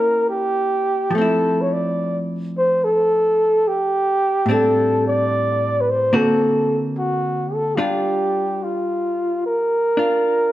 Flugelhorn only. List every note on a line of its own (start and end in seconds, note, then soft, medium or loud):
0.00 0.29 A#4 medium
0.29 1.16 G4 medium
1.15 1.63 A4 medium
1.62 1.74 C#5 medium
1.73 2.18 D5 medium
2.58 2.86 C5 medium
2.85 3.69 A4 medium
3.68 4.54 G4 medium
4.52 5.05 A4 medium
5.08 5.82 D5 medium
5.81 5.92 B4 medium
5.90 6.17 C5 medium
6.16 6.79 A4 medium
6.98 7.56 F#4 medium
7.54 7.78 A4 medium
7.76 7.82 F4 medium
7.81 8.65 G4 medium
8.63 9.44 F4 medium
9.46 10.52 A#4 medium